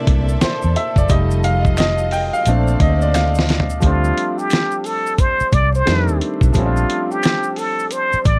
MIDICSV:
0, 0, Header, 1, 7, 480
1, 0, Start_track
1, 0, Key_signature, -2, "major"
1, 0, Tempo, 681818
1, 773, Time_signature, 4, 2, 24, 8
1, 5908, End_track
2, 0, Start_track
2, 0, Title_t, "Muted trumpet"
2, 0, Program_c, 0, 59
2, 2688, Note_on_c, 0, 65, 77
2, 3084, Note_on_c, 0, 67, 83
2, 3095, Note_off_c, 0, 65, 0
2, 3418, Note_on_c, 0, 69, 80
2, 3428, Note_off_c, 0, 67, 0
2, 3662, Note_on_c, 0, 72, 96
2, 3673, Note_off_c, 0, 69, 0
2, 3901, Note_on_c, 0, 74, 95
2, 3911, Note_off_c, 0, 72, 0
2, 4045, Note_off_c, 0, 74, 0
2, 4051, Note_on_c, 0, 72, 93
2, 4355, Note_off_c, 0, 72, 0
2, 4624, Note_on_c, 0, 65, 75
2, 5007, Note_on_c, 0, 67, 88
2, 5018, Note_off_c, 0, 65, 0
2, 5336, Note_on_c, 0, 69, 81
2, 5347, Note_off_c, 0, 67, 0
2, 5578, Note_on_c, 0, 72, 97
2, 5588, Note_off_c, 0, 69, 0
2, 5813, Note_on_c, 0, 74, 97
2, 5823, Note_off_c, 0, 72, 0
2, 5908, Note_off_c, 0, 74, 0
2, 5908, End_track
3, 0, Start_track
3, 0, Title_t, "String section"
3, 0, Program_c, 1, 48
3, 0, Note_on_c, 1, 46, 67
3, 0, Note_on_c, 1, 48, 80
3, 0, Note_on_c, 1, 69, 67
3, 0, Note_on_c, 1, 74, 71
3, 0, Note_on_c, 1, 76, 82
3, 754, Note_off_c, 1, 48, 0
3, 754, Note_off_c, 1, 74, 0
3, 755, Note_off_c, 1, 46, 0
3, 755, Note_off_c, 1, 76, 0
3, 775, Note_on_c, 1, 75, 83
3, 776, Note_on_c, 1, 53, 76
3, 777, Note_on_c, 1, 65, 72
3, 1724, Note_off_c, 1, 75, 0
3, 1725, Note_off_c, 1, 53, 0
3, 1725, Note_off_c, 1, 65, 0
3, 1732, Note_on_c, 1, 72, 69
3, 1736, Note_on_c, 1, 46, 72
3, 1737, Note_on_c, 1, 74, 81
3, 2666, Note_off_c, 1, 69, 0
3, 2683, Note_off_c, 1, 72, 0
3, 2685, Note_off_c, 1, 46, 0
3, 2685, Note_off_c, 1, 74, 0
3, 5908, End_track
4, 0, Start_track
4, 0, Title_t, "Upright piano"
4, 0, Program_c, 2, 0
4, 0, Control_c, 2, 64, 127
4, 0, Note_on_c, 2, 57, 53
4, 0, Note_on_c, 2, 58, 49
4, 0, Note_on_c, 2, 62, 47
4, 0, Note_on_c, 2, 64, 57
4, 0, Note_on_c, 2, 72, 94
4, 0, Note_on_c, 2, 74, 89
4, 266, Note_off_c, 2, 57, 0
4, 267, Note_off_c, 2, 58, 0
4, 269, Note_off_c, 2, 62, 0
4, 271, Note_off_c, 2, 64, 0
4, 301, Note_off_c, 2, 72, 0
4, 301, Note_on_c, 2, 72, 78
4, 538, Note_on_c, 2, 76, 82
4, 544, Note_off_c, 2, 72, 0
4, 688, Note_off_c, 2, 76, 0
4, 689, Note_off_c, 2, 74, 0
4, 689, Note_on_c, 2, 74, 82
4, 775, Note_on_c, 2, 55, 58
4, 777, Note_on_c, 2, 75, 93
4, 780, Note_off_c, 2, 74, 0
4, 781, Note_on_c, 2, 57, 52
4, 782, Note_on_c, 2, 63, 62
4, 783, Control_c, 2, 64, 0
4, 923, Control_c, 2, 64, 127
4, 1014, Note_on_c, 2, 77, 91
4, 1022, Note_off_c, 2, 75, 0
4, 1237, Note_off_c, 2, 77, 0
4, 1253, Note_on_c, 2, 75, 89
4, 1466, Note_off_c, 2, 55, 0
4, 1469, Note_off_c, 2, 57, 0
4, 1469, Note_off_c, 2, 63, 0
4, 1495, Note_on_c, 2, 79, 94
4, 1500, Note_off_c, 2, 75, 0
4, 1642, Note_on_c, 2, 77, 98
4, 1647, Note_off_c, 2, 79, 0
4, 1741, Control_c, 2, 64, 0
4, 1744, Note_on_c, 2, 57, 54
4, 1745, Note_on_c, 2, 60, 52
4, 1751, Note_on_c, 2, 62, 63
4, 1878, Control_c, 2, 64, 127
4, 1950, Note_off_c, 2, 77, 0
4, 1980, Note_on_c, 2, 75, 85
4, 2126, Note_on_c, 2, 74, 82
4, 2129, Note_off_c, 2, 75, 0
4, 2213, Note_on_c, 2, 77, 82
4, 2218, Note_off_c, 2, 74, 0
4, 2430, Note_off_c, 2, 57, 0
4, 2431, Note_off_c, 2, 60, 0
4, 2434, Note_off_c, 2, 62, 0
4, 2665, Note_off_c, 2, 77, 0
4, 2676, Note_on_c, 2, 53, 59
4, 2688, Note_on_c, 2, 55, 54
4, 2701, Note_on_c, 2, 57, 52
4, 2702, Control_c, 2, 64, 0
4, 2711, Note_on_c, 2, 60, 53
4, 2724, Note_on_c, 2, 62, 66
4, 2844, Control_c, 2, 64, 127
4, 4096, Note_off_c, 2, 53, 0
4, 4102, Note_off_c, 2, 55, 0
4, 4109, Note_off_c, 2, 57, 0
4, 4114, Note_off_c, 2, 60, 0
4, 4120, Note_off_c, 2, 62, 0
4, 4123, Note_on_c, 2, 51, 60
4, 4131, Note_on_c, 2, 55, 54
4, 4136, Note_on_c, 2, 57, 54
4, 4142, Control_c, 2, 64, 0
4, 4143, Note_on_c, 2, 60, 55
4, 4150, Note_on_c, 2, 62, 65
4, 4250, Control_c, 2, 64, 127
4, 4594, Note_on_c, 2, 53, 61
4, 4597, Note_off_c, 2, 55, 0
4, 4607, Note_off_c, 2, 57, 0
4, 4608, Note_off_c, 2, 51, 0
4, 4608, Note_on_c, 2, 55, 57
4, 4617, Note_on_c, 2, 57, 55
4, 4618, Note_off_c, 2, 60, 0
4, 4621, Note_off_c, 2, 62, 0
4, 4622, Control_c, 2, 64, 0
4, 4632, Note_on_c, 2, 60, 57
4, 4642, Note_on_c, 2, 61, 58
4, 4684, Note_off_c, 2, 61, 0
4, 4688, Note_on_c, 2, 62, 67
4, 4730, Control_c, 2, 64, 127
4, 5908, Note_off_c, 2, 53, 0
4, 5908, Note_off_c, 2, 55, 0
4, 5908, Note_off_c, 2, 57, 0
4, 5908, Note_off_c, 2, 60, 0
4, 5908, Note_off_c, 2, 62, 0
4, 5908, End_track
5, 0, Start_track
5, 0, Title_t, "Fingered electric bass"
5, 0, Program_c, 3, 33
5, 55, Note_on_c, 3, 36, 80
5, 252, Note_off_c, 3, 36, 0
5, 452, Note_on_c, 3, 40, 77
5, 523, Note_off_c, 3, 40, 0
5, 680, Note_on_c, 3, 30, 79
5, 756, Note_off_c, 3, 30, 0
5, 775, Note_on_c, 3, 29, 100
5, 1614, Note_off_c, 3, 29, 0
5, 1736, Note_on_c, 3, 34, 96
5, 1932, Note_off_c, 3, 34, 0
5, 1975, Note_on_c, 3, 38, 81
5, 2574, Note_off_c, 3, 38, 0
5, 2695, Note_on_c, 3, 38, 87
5, 2892, Note_off_c, 3, 38, 0
5, 3896, Note_on_c, 3, 36, 73
5, 4092, Note_off_c, 3, 36, 0
5, 4138, Note_on_c, 3, 41, 88
5, 4287, Note_off_c, 3, 41, 0
5, 4287, Note_on_c, 3, 39, 85
5, 4360, Note_off_c, 3, 39, 0
5, 4518, Note_on_c, 3, 35, 84
5, 4595, Note_off_c, 3, 35, 0
5, 4615, Note_on_c, 3, 34, 87
5, 4812, Note_off_c, 3, 34, 0
5, 5816, Note_on_c, 3, 33, 79
5, 5908, Note_off_c, 3, 33, 0
5, 5908, End_track
6, 0, Start_track
6, 0, Title_t, "Muted fingered electric bass strokes"
6, 304, Note_on_c, 9, 29, 43
6, 375, Note_off_c, 9, 29, 0
6, 3806, Note_on_c, 9, 29, 45
6, 3877, Note_off_c, 9, 29, 0
6, 5728, Note_on_c, 9, 29, 46
6, 5798, Note_off_c, 9, 29, 0
6, 5908, End_track
7, 0, Start_track
7, 0, Title_t, "Drums"
7, 51, Note_on_c, 9, 36, 88
7, 51, Note_on_c, 9, 42, 75
7, 121, Note_off_c, 9, 36, 0
7, 121, Note_off_c, 9, 42, 0
7, 202, Note_on_c, 9, 82, 44
7, 273, Note_off_c, 9, 82, 0
7, 291, Note_on_c, 9, 42, 87
7, 292, Note_on_c, 9, 26, 58
7, 292, Note_on_c, 9, 38, 111
7, 292, Note_on_c, 9, 82, 59
7, 361, Note_off_c, 9, 42, 0
7, 362, Note_off_c, 9, 26, 0
7, 362, Note_off_c, 9, 82, 0
7, 363, Note_off_c, 9, 38, 0
7, 436, Note_on_c, 9, 82, 45
7, 506, Note_off_c, 9, 82, 0
7, 536, Note_on_c, 9, 42, 61
7, 606, Note_off_c, 9, 42, 0
7, 675, Note_on_c, 9, 36, 86
7, 685, Note_on_c, 9, 82, 46
7, 746, Note_off_c, 9, 36, 0
7, 756, Note_off_c, 9, 82, 0
7, 766, Note_on_c, 9, 82, 53
7, 771, Note_on_c, 9, 36, 98
7, 772, Note_on_c, 9, 42, 81
7, 836, Note_off_c, 9, 82, 0
7, 842, Note_off_c, 9, 36, 0
7, 843, Note_off_c, 9, 42, 0
7, 922, Note_on_c, 9, 82, 49
7, 992, Note_off_c, 9, 82, 0
7, 1012, Note_on_c, 9, 82, 40
7, 1015, Note_on_c, 9, 42, 70
7, 1082, Note_off_c, 9, 82, 0
7, 1085, Note_off_c, 9, 42, 0
7, 1160, Note_on_c, 9, 36, 80
7, 1168, Note_on_c, 9, 82, 38
7, 1231, Note_off_c, 9, 36, 0
7, 1239, Note_off_c, 9, 82, 0
7, 1247, Note_on_c, 9, 26, 69
7, 1247, Note_on_c, 9, 82, 66
7, 1255, Note_on_c, 9, 42, 74
7, 1268, Note_on_c, 9, 38, 105
7, 1318, Note_off_c, 9, 26, 0
7, 1318, Note_off_c, 9, 82, 0
7, 1325, Note_off_c, 9, 42, 0
7, 1339, Note_off_c, 9, 38, 0
7, 1394, Note_on_c, 9, 82, 41
7, 1465, Note_off_c, 9, 82, 0
7, 1487, Note_on_c, 9, 46, 54
7, 1499, Note_on_c, 9, 82, 50
7, 1557, Note_off_c, 9, 46, 0
7, 1569, Note_off_c, 9, 82, 0
7, 1648, Note_on_c, 9, 82, 47
7, 1718, Note_off_c, 9, 82, 0
7, 1728, Note_on_c, 9, 42, 70
7, 1735, Note_on_c, 9, 82, 64
7, 1799, Note_off_c, 9, 42, 0
7, 1805, Note_off_c, 9, 82, 0
7, 1884, Note_on_c, 9, 82, 45
7, 1955, Note_off_c, 9, 82, 0
7, 1971, Note_on_c, 9, 36, 94
7, 1971, Note_on_c, 9, 42, 75
7, 2041, Note_off_c, 9, 36, 0
7, 2042, Note_off_c, 9, 42, 0
7, 2122, Note_on_c, 9, 82, 44
7, 2193, Note_off_c, 9, 82, 0
7, 2212, Note_on_c, 9, 42, 87
7, 2215, Note_on_c, 9, 26, 60
7, 2215, Note_on_c, 9, 82, 59
7, 2224, Note_on_c, 9, 38, 57
7, 2283, Note_off_c, 9, 42, 0
7, 2285, Note_off_c, 9, 26, 0
7, 2285, Note_off_c, 9, 82, 0
7, 2294, Note_off_c, 9, 38, 0
7, 2357, Note_on_c, 9, 82, 47
7, 2384, Note_on_c, 9, 38, 74
7, 2428, Note_off_c, 9, 82, 0
7, 2455, Note_off_c, 9, 38, 0
7, 2456, Note_on_c, 9, 42, 65
7, 2465, Note_on_c, 9, 38, 73
7, 2526, Note_off_c, 9, 42, 0
7, 2534, Note_on_c, 9, 43, 96
7, 2536, Note_off_c, 9, 38, 0
7, 2603, Note_on_c, 9, 82, 50
7, 2604, Note_off_c, 9, 43, 0
7, 2673, Note_off_c, 9, 82, 0
7, 2684, Note_on_c, 9, 82, 48
7, 2692, Note_on_c, 9, 36, 93
7, 2696, Note_on_c, 9, 42, 78
7, 2755, Note_off_c, 9, 82, 0
7, 2762, Note_off_c, 9, 36, 0
7, 2767, Note_off_c, 9, 42, 0
7, 2847, Note_on_c, 9, 82, 45
7, 2918, Note_off_c, 9, 82, 0
7, 2939, Note_on_c, 9, 42, 69
7, 3010, Note_off_c, 9, 42, 0
7, 3089, Note_on_c, 9, 82, 35
7, 3159, Note_off_c, 9, 82, 0
7, 3170, Note_on_c, 9, 26, 60
7, 3170, Note_on_c, 9, 82, 64
7, 3176, Note_on_c, 9, 42, 74
7, 3190, Note_on_c, 9, 38, 107
7, 3240, Note_off_c, 9, 26, 0
7, 3240, Note_off_c, 9, 82, 0
7, 3247, Note_off_c, 9, 42, 0
7, 3261, Note_off_c, 9, 38, 0
7, 3318, Note_on_c, 9, 82, 41
7, 3388, Note_off_c, 9, 82, 0
7, 3408, Note_on_c, 9, 46, 47
7, 3420, Note_on_c, 9, 82, 48
7, 3478, Note_off_c, 9, 46, 0
7, 3491, Note_off_c, 9, 82, 0
7, 3567, Note_on_c, 9, 82, 48
7, 3637, Note_off_c, 9, 82, 0
7, 3650, Note_on_c, 9, 36, 84
7, 3650, Note_on_c, 9, 42, 64
7, 3651, Note_on_c, 9, 82, 58
7, 3720, Note_off_c, 9, 36, 0
7, 3721, Note_off_c, 9, 42, 0
7, 3721, Note_off_c, 9, 82, 0
7, 3801, Note_on_c, 9, 82, 42
7, 3872, Note_off_c, 9, 82, 0
7, 3889, Note_on_c, 9, 82, 39
7, 3890, Note_on_c, 9, 36, 87
7, 3891, Note_on_c, 9, 42, 72
7, 3959, Note_off_c, 9, 82, 0
7, 3960, Note_off_c, 9, 36, 0
7, 3962, Note_off_c, 9, 42, 0
7, 4045, Note_on_c, 9, 82, 42
7, 4116, Note_off_c, 9, 82, 0
7, 4132, Note_on_c, 9, 42, 82
7, 4134, Note_on_c, 9, 26, 56
7, 4134, Note_on_c, 9, 38, 107
7, 4134, Note_on_c, 9, 82, 52
7, 4202, Note_off_c, 9, 42, 0
7, 4204, Note_off_c, 9, 26, 0
7, 4204, Note_off_c, 9, 38, 0
7, 4204, Note_off_c, 9, 82, 0
7, 4281, Note_on_c, 9, 82, 46
7, 4351, Note_off_c, 9, 82, 0
7, 4374, Note_on_c, 9, 42, 58
7, 4445, Note_off_c, 9, 42, 0
7, 4513, Note_on_c, 9, 36, 81
7, 4523, Note_on_c, 9, 82, 44
7, 4584, Note_off_c, 9, 36, 0
7, 4594, Note_off_c, 9, 82, 0
7, 4602, Note_on_c, 9, 82, 49
7, 4610, Note_on_c, 9, 36, 89
7, 4613, Note_on_c, 9, 42, 76
7, 4672, Note_off_c, 9, 82, 0
7, 4680, Note_off_c, 9, 36, 0
7, 4683, Note_off_c, 9, 42, 0
7, 4764, Note_on_c, 9, 82, 44
7, 4834, Note_off_c, 9, 82, 0
7, 4855, Note_on_c, 9, 42, 68
7, 4926, Note_off_c, 9, 42, 0
7, 5008, Note_on_c, 9, 82, 38
7, 5079, Note_off_c, 9, 82, 0
7, 5091, Note_on_c, 9, 26, 65
7, 5091, Note_on_c, 9, 82, 61
7, 5094, Note_on_c, 9, 42, 70
7, 5108, Note_on_c, 9, 38, 107
7, 5161, Note_off_c, 9, 26, 0
7, 5161, Note_off_c, 9, 82, 0
7, 5164, Note_off_c, 9, 42, 0
7, 5178, Note_off_c, 9, 38, 0
7, 5232, Note_on_c, 9, 82, 40
7, 5303, Note_off_c, 9, 82, 0
7, 5325, Note_on_c, 9, 46, 47
7, 5339, Note_on_c, 9, 82, 47
7, 5395, Note_off_c, 9, 46, 0
7, 5409, Note_off_c, 9, 82, 0
7, 5487, Note_on_c, 9, 82, 45
7, 5557, Note_off_c, 9, 82, 0
7, 5566, Note_on_c, 9, 42, 68
7, 5573, Note_on_c, 9, 82, 58
7, 5636, Note_off_c, 9, 42, 0
7, 5644, Note_off_c, 9, 82, 0
7, 5720, Note_on_c, 9, 82, 43
7, 5790, Note_off_c, 9, 82, 0
7, 5808, Note_on_c, 9, 82, 40
7, 5810, Note_on_c, 9, 36, 88
7, 5812, Note_on_c, 9, 42, 72
7, 5879, Note_off_c, 9, 82, 0
7, 5881, Note_off_c, 9, 36, 0
7, 5882, Note_off_c, 9, 42, 0
7, 5908, End_track
0, 0, End_of_file